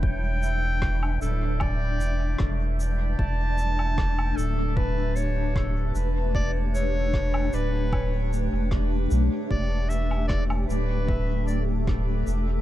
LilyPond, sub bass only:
\new Staff \with { instrumentName = "Sub bass" } { \clef bass \time 4/4 \key g \lydian \tempo 4 = 76 e,,4. d,,4 e,,8 e,,4 | e,,4. d,,2 e,,8~ | e,,4. d,,4~ d,,16 e,,8. b,,16 r16 | e,,4. d,,2 e,,8 | }